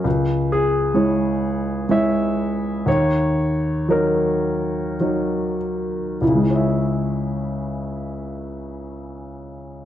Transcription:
\new Staff \with { instrumentName = "Grand piano" } { \time 3/4 \key cis \dorian \tempo 4 = 54 << { r8 gis'4. e''4 | cis''4 ais'4. r8 | <cis, cis gis e' cis'' e''>2. | } \\ { cis,4 <gis e' cis''>4 <gis e' cis''>4 | dis,4 <fis dis' cis''>4 <fis dis' cis''>4 | r2. | } >> }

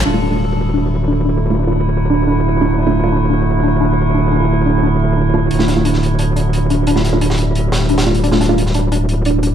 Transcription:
<<
  \new Staff \with { instrumentName = "Synth pluck" } { \time 4/4 \key d \minor \tempo 4 = 176 d'16 r16 d'8 r8 d'16 r16 d'8 r8 d'16 r16 d'8 | r8 d'16 r16 d'8 r8 d'16 r16 d'8 r8 d'16 r16 | d'8 r8 d'16 r16 d'8 r8 d'16 r16 d'8 r8 | d'16 r16 d'8 r8 d'16 r16 d'8 r8 d'16 r16 d'8 |
r8 d'16 r16 d'8 r8 d'16 r16 d'8 r8 d'16 r16 | d'8 r8 d'16 r16 d'8 r8 d'16 r16 d'8 r8 | d'16 r16 d'8 r8 d'16 r16 d'8 r8 d'16 r16 d'8 | }
  \new Staff \with { instrumentName = "Synth stab" } { \time 4/4 \key d \minor r16 <a d' f'>8 <a d' f'>16 r2. | r16 <a d' f'>8 <a d' f'>8 r2 r16 <a d' f'>16 r16 | r16 <a d' f'>8 <a d' f'>16 r2. | r8. <a d' f'>8 r2 r16 <a d' f'>16 r16 |
r16 <a d' f'>8 <a d' f'>16 r2. | r16 <a d' f'>8 <a d' f'>8 r2 r16 <a d' f'>16 r16 | r16 <a d' f'>8 <a d' f'>16 r2. | }
  \new Staff \with { instrumentName = "Synth drone" } { \clef bass \time 4/4 \key d \minor << { <d e'>1~ | <d e'>1~ | <d e'>1~ | <d e'>1~ |
<d e'>1~ | <d e'>1~ | <d e'>1 | } \\ { a1~ | a1~ | a1~ | a1 |
g1~ | g1~ | g1 | } >> }
  \new Staff \with { instrumentName = "Wobble bass" } { \clef bass \time 4/4 \key d \minor d,,1~ | d,,1~ | d,,1~ | d,,1 |
d,,1~ | d,,1~ | d,,1 | }
  \new DrumStaff \with { instrumentName = "Drums" } \drummode { \time 4/4 r4 hh8 <hh tamb>8 hh8 <hh tamb>8 hh8 <hh tamb>8 | hh8 <hh tamb>8 r8 <hh tamb>8 hh8 <hh tamb>8 hh16 tamb16 <hh tamb>8 | hh8 <hh tamb>8 hh8 <hh tamb>8 hh8 <hh tamb>8 hh16 tamb16 <hh tamb>8 | hh8 <hh tamb>8 hh8 <hh tamb>8 hh8 <hh tamb>8 hh16 tamb16 <hh tamb>8 |
hh16 sn16 <hh sn>8 hh16 sn16 <hh tamb>8 hh8 <hh tamb>8 hh16 tamb16 <hh tamb>8 | hh16 sn16 <hh sn tamb>8 hh16 sn16 <hh tamb>8 hh8 <hh sn>16 sn16 hh16 <hh sn>16 <hh tamb>16 hh16 | hh16 sn16 <hh sn tamb>8 hh16 sn16 <hh tamb>8 hh8 <hh tamb>8 hh16 tamb16 <hh tamb>8 | }
>>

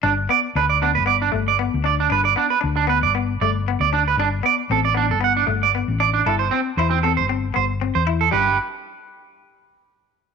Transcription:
<<
  \new Staff \with { instrumentName = "Clean electric guitar" } { \time 4/4 \key g \major \tempo 4 = 116 d'16 r16 d''16 r16 b'16 d''16 d'16 b'16 d''16 d'16 r16 d''16 r8 d''16 d'16 | b'16 d''16 d'16 b'16 r16 d'16 b'16 d''16 r8 d''16 r8 d''16 d'16 b'16 | d'16 r16 d''16 r16 a'16 d''16 d'16 a'16 fis''16 d'16 r16 d''16 r8 d''16 d'16 | a'16 c''16 c'16 r16 c''16 c'16 a'16 c''16 r8 c''16 r8 c''16 r16 a'16 |
<g' b'>8 r2. r8 | }
  \new Staff \with { instrumentName = "Clean electric guitar" } { \time 4/4 \key g \major d'8 b8 d'8 b8 b8 a8 b8 d'8 | d'8 b8 d'8 b8 b8 a8 b8 d'8 | d'8 b8 c'8 b8 b8 a8 b8 d'8 | e'8 c'8 e'8 c'8 c'8 b8 c'8 e'8 |
g8 r2. r8 | }
  \new Staff \with { instrumentName = "Fingered electric bass" } { \clef bass \time 4/4 \key g \major g,,8 r8 d,8. g,,8. g,,8. d,8. | g,,8 r8 d,8. g,,8. g,,8. d,8. | g,,8 r8 a,,8. g,,8. g,,8. a,,8. | g,,8 r8 e,8. g,,8. g,,8. e,8. |
g,,8 r2. r8 | }
>>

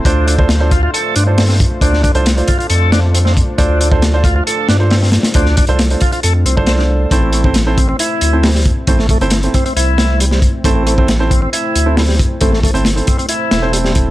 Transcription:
<<
  \new Staff \with { instrumentName = "Grand piano" } { \time 4/4 \key a \minor \tempo 4 = 136 <d' f' a' c''>8. <d' f' a' c''>16 r16 <d' f' a' c''>16 r4 r16 <d' f' a' c''>16 r4 | <d' f' a' c''>16 r8 <d' f' a' c''>16 r16 <d' f' a' c''>16 r2 r8 | <d' f' a' c''>8. <d' f' a' c''>16 r16 <d' f' a' c''>16 r4 r16 <d' f' a' c''>16 r4 | <d' f' a' c''>16 r8 <d' f' a' c''>16 r16 <d' f' a' c''>16 r4 r16 <d' f' a' c''>4~ <d' f' a' c''>16 |
<c' e' a' c''>8. <c' e' a' c''>16 r16 <c' e' a' c''>16 r4 r16 <c' e' a' c''>16 r4 | <c' e' a' c''>16 r8 <c' e' a' c''>16 r16 <c' e' a' c''>16 r2 r8 | <c' e' a' c''>8. <c' e' a' c''>16 r16 <c' e' a' c''>16 r4 r16 <c' e' a' c''>16 r4 | <c' e' a' c''>16 r8 <c' e' a' c''>16 r16 <c' e' a' c''>16 r4 r16 <c' e' a' c''>4~ <c' e' a' c''>16 | }
  \new Staff \with { instrumentName = "Analog synth pad" } { \time 4/4 \key a \minor <a d' f' c''>1~ | <a d' f' c''>1~ | <a d' f' c''>1~ | <a d' f' c''>1 |
<a c' e' c''>1~ | <a c' e' c''>1~ | <a c' e' c''>1~ | <a c' e' c''>1 | }
  \new Staff \with { instrumentName = "Tonewheel organ" } { \time 4/4 \key a \minor d'8 d'16 r8. f'16 f'16 a'8 d'16 r16 c'16 c'16 r8 | d'8 d'16 r8. f'16 f'16 a'8 d'16 r16 c'16 c'16 r8 | d'8 d'16 r8. f'16 f'16 a'8 d'16 r16 c'16 c'16 r8 | d'8 d'16 r8. f'16 f'16 a'16 r16 c'16 r16 c''16 d'16 r8 |
a16 a16 a16 r8. c'16 c'16 e'4 g16 g16 r8 | a16 a16 a16 r8. c'16 c'16 e'4 g16 g16 r8 | a16 a16 a16 r8. c'16 c'16 e'4 g16 g16 r8 | a16 a16 a16 r8. c'16 c'16 e'4 g16 g16 r8 | }
  \new Staff \with { instrumentName = "Sub bass" } { \clef bass \time 4/4 \key a \minor d,2 r8 g,4~ g,16 r16 | d,8. c,8. r8 f,4.~ f,16 r16 | d,2 r8 g,4~ g,16 r16 | d,8. c,8. r8 f,8 c,4. |
a,,2 r8 d,4~ d,16 r16 | a,,8. g,,8. r8 c,4.~ c,16 r16 | a,,2 r8 d,4~ d,16 r16 | a,,8. g,,8. r4 e,,4. | }
  \new DrumStaff \with { instrumentName = "Drums" } \drummode { \time 4/4 <hh bd>8 hh16 bd16 <hh sn>8 <hh bd>8 hh8 hh8 <hho sn>16 sn16 <hh bd>8 | <hh bd>16 sn16 <hh bd>16 hh16 <hh sn>16 hh16 <hh bd>16 hh16 hh8 <hh sn>8 hh16 sn16 <hh bd>8 | <hh bd>8 hh16 bd16 <hh sn>8 <hh bd>8 hh8 <hh sn>8 <hho sn>16 sn16 <hh sn>16 <hh sn>16 | <hh bd>16 sn16 <hh bd>16 hh16 <hh sn>16 hh16 <hh bd>16 hh16 hh8 hh16 bd16 <hh sn>16 sn8. |
<hh bd>8 hh16 bd16 <hh sn>8 <hh bd>8 hh8 hh8 <hho sn>16 sn16 <hh bd>8 | <hh bd>16 sn16 <hh bd>16 hh16 <hh sn>16 hh16 <hh bd>16 hh16 hh8 <hh sn>8 hh16 sn16 <hh bd>8 | <hh bd>8 hh16 bd16 <hh sn>8 <hh bd>8 hh8 hh8 <hho sn>16 sn16 <hh bd>8 | <hh bd>16 sn16 <hh bd>16 hh16 <hh sn>16 hh16 <hh bd>16 hh16 hh8 <hh sn>8 hh16 sn16 <hh bd>8 | }
>>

